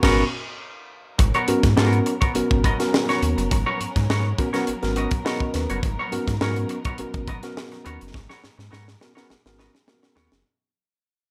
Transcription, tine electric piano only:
0.02 0.23 B3 loud
0.02 0.23 C#4 loud
0.02 0.23 F#4 loud
0.02 0.23 A#4 loud
1.48 1.67 B3 medium
1.48 1.67 C#4 medium
1.48 1.67 F#4 medium
1.48 1.67 A#4 medium
1.76 2.13 B3 loud
1.76 2.13 C#4 medium
1.76 2.14 F#4 medium
1.76 2.14 A#4 loud
2.35 2.62 B3 medium
2.35 2.62 C#4 medium
2.35 2.62 F#4 medium
2.35 2.63 A#4 medium
2.79 3.51 B3 medium
2.79 3.51 C#4 medium
2.79 3.51 F#4 medium
2.79 3.51 A#4 loud
4.39 4.48 B3 medium
4.39 4.48 C#4 medium
4.39 4.48 F#4 medium
4.39 4.48 A#4 medium
4.54 4.71 B3 loud
4.54 4.71 C#4 medium
4.54 4.71 F#4 medium
4.54 4.71 A#4 loud
4.82 5.09 B3 medium
4.82 5.09 C#4 medium
4.82 5.10 F#4 medium
4.82 5.10 A#4 loud
5.25 5.79 B3 medium
5.25 5.79 C#4 medium
5.25 5.80 F#4 medium
5.25 5.80 A#4 loud
5.25 5.52 D#5 medium
5.54 5.81 B4 medium
6.12 6.31 B3 loud
6.12 6.31 C#4 medium
6.12 6.31 F#4 medium
6.12 6.31 A#4 loud
6.41 6.77 B3 medium
6.41 6.78 C#4 medium
6.41 6.77 F#4 medium
6.41 6.78 A#4 loud
6.99 7.26 B3 medium
6.99 7.26 C#4 medium
6.99 7.26 F#4 medium
6.99 7.26 A#4 medium
7.43 8.14 B3 loud
7.43 8.14 C#4 medium
7.43 8.14 F#4 loud
7.43 8.14 A#4 loud
9.01 9.11 B3 medium
9.01 9.11 C#4 medium
9.01 9.11 F#4 medium
9.01 9.11 A#4 medium
9.17 9.34 B3 loud
9.17 9.34 C#4 medium
9.17 9.34 F#4 medium
9.17 9.34 A#4 loud
9.46 9.72 B3 medium
9.46 9.72 C#4 medium
9.46 9.72 F#4 medium
9.46 9.73 A#4 loud
9.87 9.94 A#3 medium
9.87 10.41 C#4 medium
9.87 10.42 F#4 medium
9.87 10.42 A#4 medium
9.94 10.45 B3 medium

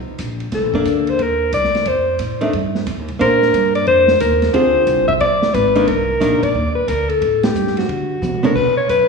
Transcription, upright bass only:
0.07 muted upright bass stroke soft
0.19 0.52 A#1 medium
0.53 0.63 C2 medium
0.63 0.73 A#1 medium
0.74 0.85 G1 medium
0.86 1.18 D2 medium
1.19 1.52 D#2 medium
1.53 1.73 C2 medium
1.74 muted upright bass stroke soft
1.86 2.19 F2 medium
2.19 2.52 A2 medium
2.53 2.86 G2 medium
2.87 2.99 F2 medium
2.99 3.09 D#2 soft
3.09 3.20 C2 medium
3.21 3.53 A#2 medium
3.54 3.86 G2 medium
3.87 4.20 F2 medium
4.20 4.53 D#2 loud
4.54 4.86 D2 medium
4.87 5.20 C2 medium
5.21 5.53 G1 medium
5.54 5.87 G#1 loud
5.87 6.20 C2 medium
6.21 6.54 A#1 loud
6.55 6.87 D#2 medium
6.88 7.21 D2 medium
7.22 7.54 A2 medium
7.55 7.87 G2 medium
7.88 8.21 D3 medium
8.22 8.54 C3 medium
8.56 8.88 B2 medium
8.89 9.08 F#2 medium

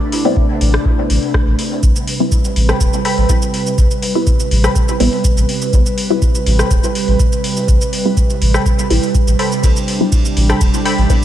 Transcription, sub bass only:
0.61 0.78 A1 loud
1.10 1.19 A1 medium
1.47 1.55 A1 medium
1.83 1.92 A1 loud
2.56 2.73 A1 loud
2.81 2.89 E1 medium
3.18 3.26 A1 medium
3.78 3.87 A1 loud
4.51 4.68 A1 loud
5.00 5.09 A1 medium
5.37 5.45 A1 medium
5.73 5.82 A1 loud
6.46 6.63 A1 loud
6.71 6.80 E1 medium
7.08 7.16 A1 loud
7.68 7.77 A1 loud
8.42 8.59 A1 loud
8.90 8.99 A1 medium
9.27 9.35 A1 medium
9.64 9.72 A1 loud
10.37 10.54 A1 loud
10.61 10.70 E1 medium
10.98 11.06 A1 loud

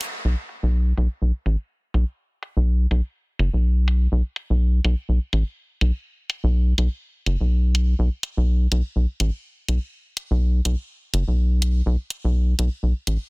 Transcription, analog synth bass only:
0.25 0.35 B1 medium
0.63 0.93 B1 medium
0.97 1.08 B1 medium
1.22 1.32 B1 medium
1.46 1.56 A1 medium
1.94 2.04 B1 medium
2.57 2.86 B1 medium
2.91 3.01 B1 medium
3.39 3.50 F#1 loud
3.53 4.07 B1 medium
4.12 4.22 B1 medium
4.50 4.80 B1 medium
4.85 4.95 B1 medium
5.09 5.19 B1 medium
5.33 5.43 A1 medium
5.81 5.92 B1 medium
6.44 6.74 B1 medium
6.78 6.88 B1 medium
7.26 7.37 F#1 loud
7.41 7.95 B1 medium
7.99 8.09 B1 medium
8.37 8.67 B1 medium
8.72 8.82 B1 medium
8.96 9.06 B1 medium
9.20 9.30 A1 medium
9.68 9.79 B1 medium
10.31 10.61 B1 medium
10.65 10.75 B1 medium
11.14 11.24 F#1 loud
11.28 11.82 B1 medium
11.86 11.96 B1 loud
12.24 12.54 B1 medium
12.59 12.69 B1 medium
12.83 12.93 B1 medium
13.07 13.17 A1 medium

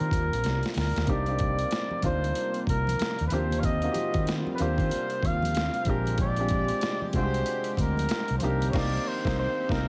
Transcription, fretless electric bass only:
0.00 0.11 D#3 loud
0.12 0.29 D#2 medium
0.32 0.42 A#1 medium
0.45 0.61 C2 medium
0.76 0.93 D2 medium
0.96 1.08 D#2 medium
1.08 1.63 C2 loud
2.03 2.31 D2 loud
2.68 2.95 C2 medium
3.00 muted fretless electric bass stroke medium
3.20 3.30 D#2 medium
3.32 3.87 D#2 loud
3.96 muted fretless electric bass stroke soft
4.15 4.43 D#3 medium
4.60 4.76 D#2 medium
4.79 4.89 D#3 loud
5.23 5.68 D#2 loud
5.87 6.70 A#1 loud
7.14 7.42 C2 medium
7.78 8.06 D2 medium
8.11 muted fretless electric bass stroke medium
8.30 8.41 C2 medium
8.43 8.70 C2 loud
8.74 8.97 C2 loud
9.26 9.46 C2 loud
9.70 9.88 C2 loud

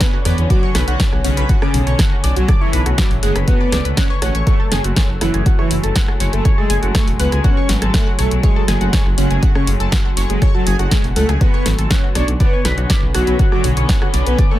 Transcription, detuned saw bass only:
0.25 0.33 E2 loud
0.38 0.45 E2 medium
0.75 0.83 B1 loud
0.88 0.95 B1 medium
1.12 1.20 B1 medium
1.24 1.32 B1 loud
1.37 1.45 B1 medium
1.74 1.82 B1 medium
1.87 1.94 B1 medium
2.24 2.31 B1 loud
2.36 2.44 B1 medium
2.73 2.81 B1 loud
2.86 2.93 B1 medium
3.11 3.18 A1 medium
3.23 3.31 F#1 medium
3.36 3.43 F#1 medium
3.72 3.80 C#2 loud
3.85 3.93 C#2 medium
4.22 4.30 A1 medium
4.35 4.42 A1 medium
4.72 4.79 F#1 loud
4.84 4.92 F#1 medium
5.09 5.17 F#1 medium
5.21 5.29 F#1 loud
5.34 5.41 F#1 medium
5.71 5.79 F#1 loud
5.84 5.91 F#1 medium
6.20 6.28 F#1 loud
6.33 6.40 F#1 medium
6.70 6.78 F#1 loud
6.83 6.90 F#1 medium
7.07 7.15 E1 medium
7.20 7.27 C#2 loud
7.32 7.40 C#2 medium
7.69 7.77 G#1 medium
7.82 7.89 G#1 medium
8.19 8.26 B1 loud
8.31 8.39 B1 medium
8.68 8.76 F#1 loud
8.81 8.88 F#1 medium
9.06 9.13 F#1 medium
9.18 9.26 F#1 loud
9.31 9.38 F#1 medium
9.67 9.75 F#1 medium
9.80 9.88 F#1 medium
10.17 10.25 F#1 medium
10.30 10.37 F#1 medium
10.67 10.74 F#1 loud
10.79 10.87 F#1 medium
11.04 11.12 E1 medium
11.16 11.24 C#2 loud
11.29 11.36 C#2 medium
11.66 11.74 G#1 medium
11.79 11.86 G#1 medium
12.15 12.23 B1 loud
12.28 12.36 B1 medium
12.65 12.73 B1 loud
12.78 12.85 B1 medium
13.03 13.10 B1 medium
13.15 13.22 B1 loud
13.27 13.35 B1 medium
13.64 13.72 B1 medium
13.77 13.84 B1 medium
14.14 14.22 B1 loud
14.27 14.34 B1 medium

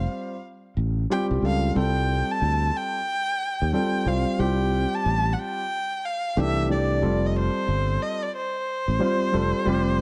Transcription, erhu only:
0.00 0.42 F5 medium
1.12 1.26 G5 loud
1.46 1.75 F5 medium
1.79 2.33 G5 loud
2.31 2.78 A5 loud
2.76 3.74 G5 loud
3.75 4.09 G5 loud
4.08 4.41 F5 loud
4.40 4.96 G5 medium
4.94 5.34 A5 loud
5.33 5.40 F#5 medium
5.39 6.06 G5 loud
6.05 6.41 F5 medium
6.40 6.71 E5 loud
6.71 7.27 D5 medium
7.26 7.37 D#5 medium
7.39 8.04 C5 medium
8.02 8.24 D#5 medium
8.23 8.35 D5 medium
8.36 10.01 C5 loud

